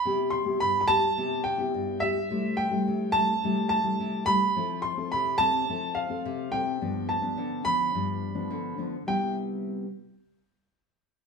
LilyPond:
<<
  \new Staff \with { instrumentName = "Grand piano" } { \time 4/4 \key c \major \tempo 4 = 106 b''8 c'''8 b''16. b''32 a''4 g''4 e''8~ | e''8 g''4 a''4 a''4 b''8~ | b''8 c'''8 b''8 a''4 f''4 g''8~ | g''8 a''4 b''2 r8 |
g''8 r2. r8 | }
  \new Staff \with { instrumentName = "Nylon-string guitar" } { \time 4/4 \key c \major << { <b e' g'>8. <b e' g'>8. <b e' g'>16 r16 <b e' g'>8 r16 <b e' g'>8. <b e' g'>16 r16 | <g a e'>8. <g a e'>8. <g a e'>16 r16 <g a e'>8. <g a e'>8. <g a e'>16 r16 | <c' e' a'>8. <c' e' a'>8. <c' e' a'>8 <c' e' a'>8. <c' a'>8. <c' e' a'>8 | <f b d'>8. <f b d'>8. <f b d'>8 <f b d'>8. <f b d'>8. <f b d'>16 r16 |
<c g b e'>8 r2. r8 | } \\ { c4 g,4 c4 g,4 | c4 c4 c4 c4 | f4 c4 f4 c4 | g,4 d4 g,4 d4 |
r1 | } >> }
>>